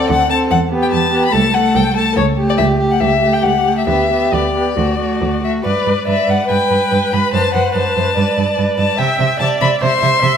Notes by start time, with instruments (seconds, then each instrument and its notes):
Already playing: viola C4, violin A4
0.10 cello D2, violin F#5
0.30 viola C4, violin A4 A5
0.51 cello E2, violin F#5
0.70 viola B3, violin G4
0.83 violin G5
0.92 cello E2, violin A5
1.12 viola B3, violin G4
1.25 violin B5
1.32 cello C2, viola A3, violin A4 A5
1.54 viola A3, violin A4 F#5
1.75 cello C2, violin G5
1.96 viola A3, violin A4 A5
2.17 cello C#2, violin C#5
2.37 viola A3, violin G4
2.49 violin D5
2.58 cello C#2, violin E5
2.80 viola A3, violin G4
2.91 violin F#5
3.00 cello C#2, violin E5
3.22 viola A3, violin G4
3.33 violin G5
3.43 cello C#2, violin F#5
3.66 viola A3, violin G4
3.78 violin E5
3.87 cello D2, viola B3, violin G4 E5
4.10 viola B3, violin G4
4.33 cello D2, violin D5
4.55 viola B3, violin G4
4.77 cello D2, viola A3, violin F#4
5.00 viola A3, violin F#4
5.22 cello D2
5.43 viola A3, violin F#4 E5
5.64 cello G2, viola B4, violin B4 D5
5.86 cello G2, violin B4
6.07 cello G2, violin B4 E5, viola D5
6.28 cello G2, violin B4 F#5
6.49 cello G2, violin B4 G5, viola B4
6.70 cello G2, violin B4
6.91 cello G2, violin B4
7.12 cello G2, violin B4 B5
7.33 cello F#2, violin C5 A5
7.54 cello F#2, violin C5 F#5
7.75 cello F#2, violin C5 A5
7.96 cello F#2, violin C5
8.17 cello G2, violin B4, viola D5
8.37 cello G2, violin B4
8.58 cello G2, violin B4
8.78 cello G2, violin B4 A5
8.98 cello C3, violin E5 G5, viola E5
9.18 cello C3, violin E5
9.39 cello C3, viola D5, violin E5 A5
9.61 cello C3, violin E5 B5
9.81 cello C3, viola C5, violin E5 C6
10.01 cello C3, violin E5
10.22 cello C3, viola E5, violin E5